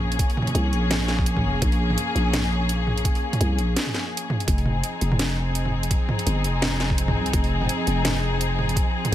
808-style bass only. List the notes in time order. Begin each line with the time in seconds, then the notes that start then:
Already playing: A#1
0.55 C2
0.73 A#1
1.44 F1
1.62 A#1
2.15 A#1
3.41 C2
3.58 A#1
4.48 F1
5.01 F1
6.26 G1
6.44 F1
7.16 C2
7.33 F1
7.87 F1